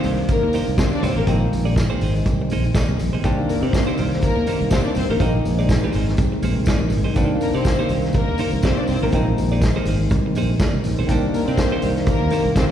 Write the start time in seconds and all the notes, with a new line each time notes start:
Already playing: C3 D#3 G3 A#3 C4 D4
0.03 C2 A#3 D#4 G4 C5, open hi-hat, tambourine
0.17 muted clean electric guitar stroke, tambourine
0.28 A#3 A#4, muted clean electric guitar stroke, kick, closed hi-hat, tambourine
0.43 D#2, muted clean electric guitar stroke
0.53 A#3 D#4 G4 C5, open hi-hat, tambourine
0.67 C2, muted clean electric guitar stroke, tambourine
0.77 C3 C4 C5, kick, snare, closed hi-hat, tambourine
0.92 D4 D5, muted clean electric guitar stroke, tambourine
1.03 C2 A#3 C4 D#4 G4 C5, open hi-hat, tambourine
1.16 A1 A#3 D#4 G4 A#4 C5
1.26 A#1 C3 F3 G#3 A#3 C4 D#4 G#4 C5, kick, closed hi-hat, tambourine
1.41 muted clean electric guitar stroke
1.52 A#1, muted clean electric guitar stroke, open hi-hat, tambourine
1.65 A#3 D#4 G#4 D5, tambourine
1.76 muted clean electric guitar stroke, kick, snare, closed hi-hat, tambourine
1.90 A#3 D#4 G#4 C5
2.01 G#1 A#3 D#4 G#4 C5, open hi-hat, tambourine
2.15 muted clean electric guitar stroke, tambourine
2.26 C2, muted clean electric guitar stroke, kick, closed hi-hat, tambourine
2.41 muted clean electric guitar stroke
2.49 A#1 A#3 D#4 G#4 C5, open hi-hat, tambourine
2.64 muted clean electric guitar stroke, tambourine
2.74 A#3 D#4 G#4 D5, kick, snare, closed hi-hat, tambourine
2.89 C2, muted clean electric guitar stroke, tambourine
2.99 A#1, muted clean electric guitar stroke, open hi-hat, tambourine
3.13 B1 A#3 D#4 G#4 C5
3.22 C2 D3 G3 A#3 C4 D4 D#4 G4 C5, kick, closed hi-hat, tambourine
3.29 D#3
3.39 muted clean electric guitar stroke
3.48 A#3 A#4, muted clean electric guitar stroke, open hi-hat, tambourine
3.62 C3 A#3 C4 D#4 G4 C5 D5
3.73 muted clean electric guitar stroke, kick, snare, closed hi-hat, tambourine
3.87 A#3 D#4 G4 C5
3.98 C2 A#3 D#4 G4 C5, open hi-hat, tambourine
4.11 muted clean electric guitar stroke, snare, tambourine
4.21 A#3 A#4, muted clean electric guitar stroke, kick, closed hi-hat, tambourine
4.36 D#2, muted clean electric guitar stroke
4.46 A#3 D#4 G4 C5, open hi-hat, tambourine
4.61 C2, muted clean electric guitar stroke
4.70 C3 A#3 C4 D#4 G4 C5 D5, kick, snare, closed hi-hat, tambourine
4.84 D4 D5, muted clean electric guitar stroke, tambourine
4.95 C2 C4 C5, muted clean electric guitar stroke, open hi-hat, tambourine
5.09 A1 A#3 D#4 G4 A#4 C5
5.19 A#1 F3 G#3 A#3 C4 D#4 G#4 C5, kick, closed hi-hat, tambourine
5.34 muted clean electric guitar stroke
5.45 A#1, muted clean electric guitar stroke, open hi-hat, tambourine
5.58 A#3 D#4 G#4 D5, tambourine
5.69 muted clean electric guitar stroke, kick, snare, closed hi-hat, tambourine
5.84 A#3 D#4 G#4 C5
5.93 G#1 A#3 D#4 G#4 C5, open hi-hat, tambourine
6.06 muted clean electric guitar stroke, snare, tambourine
6.17 C2, muted clean electric guitar stroke, kick, closed hi-hat, tambourine
6.32 muted clean electric guitar stroke
6.42 A#1 A#3 D#4 G#4 C5, open hi-hat, tambourine
6.56 C2, muted clean electric guitar stroke
6.66 A#3 D#4 G#4 D5, kick, snare, closed hi-hat, tambourine
6.81 A#1, muted clean electric guitar stroke
6.90 G#1, muted clean electric guitar stroke, open hi-hat, tambourine
7.04 B1 A#3 D#4 G#4 C5
7.14 C2 D#3 G3 A#3 C4 D4 D#4 G4 C5, kick, closed hi-hat, tambourine
7.30 muted clean electric guitar stroke
7.40 A#3 A#4, muted clean electric guitar stroke, open hi-hat, tambourine
7.53 C3 A#3 C4 D#4 G4 C5 D5, tambourine
7.65 muted clean electric guitar stroke, kick, snare, closed hi-hat, tambourine
7.79 A#3 D#4 G4 C5
7.89 C2 A#3 D#4 G4 C5, open hi-hat, tambourine
8.02 muted clean electric guitar stroke, snare, tambourine
8.13 A#3 A#4, muted clean electric guitar stroke, kick, closed hi-hat, tambourine
8.28 D#2, muted clean electric guitar stroke
8.38 A#3 D#4 G4 C5, open hi-hat, tambourine
8.51 C2, muted clean electric guitar stroke, tambourine
8.63 C3 A#3 C4 D#4 G4 C5 D5, kick, snare, closed hi-hat, tambourine
8.77 D4 D5, muted clean electric guitar stroke, tambourine
8.87 C2 C4 C5, muted clean electric guitar stroke, open hi-hat, tambourine
9.01 A1 A#3 D#4 G4 A#4 C5
9.12 A#1 F3 G#3 A#3 C4 D#4 G#4 C5, kick, closed hi-hat, tambourine
9.27 muted clean electric guitar stroke
9.37 A#1, muted clean electric guitar stroke, open hi-hat, tambourine
9.51 A#3 D#4 G#4 D5, tambourine
9.62 kick, snare, closed hi-hat, tambourine
9.76 A#3 D#4 G#4 C5
9.85 G#1 A#3 D#4 G#4 C5, open hi-hat, tambourine
9.99 muted clean electric guitar stroke, tambourine
10.10 C2, muted clean electric guitar stroke, kick, closed hi-hat, tambourine
10.26 muted clean electric guitar stroke
10.35 A#1 A#3 D#4 G#4 C5, open hi-hat, tambourine
10.51 muted clean electric guitar stroke
10.59 A#3 D#4 G#4 D5, kick, snare, closed hi-hat, tambourine
10.74 C2, muted clean electric guitar stroke, tambourine
10.84 A#1, muted clean electric guitar stroke, open hi-hat, tambourine
10.99 B1 A#3 D#4 G#4 C5
11.07 C2 D#3 G3 A#3 C4 D4 D#4, kick, closed hi-hat, tambourine
11.11 G4 C5
11.24 muted clean electric guitar stroke
11.33 A#3 A#4, muted clean electric guitar stroke, open hi-hat, tambourine
11.47 C3 A#3 C4 D#4 G4 C5 D5, tambourine
11.58 muted clean electric guitar stroke, kick, snare, closed hi-hat, tambourine
11.72 A#3 D#4 G4 C5
11.82 C2 A#3 D#4 G4 C5, open hi-hat, tambourine
11.96 muted clean electric guitar stroke, snare, tambourine
12.06 A#3 A#4, muted clean electric guitar stroke, kick, closed hi-hat, tambourine
12.21 D#2, muted clean electric guitar stroke
12.30 A#3 D#4 G4 C5, open hi-hat, tambourine
12.45 C2, muted clean electric guitar stroke
12.55 C3 C4 C5, muted clean electric guitar stroke, kick, snare, closed hi-hat, tambourine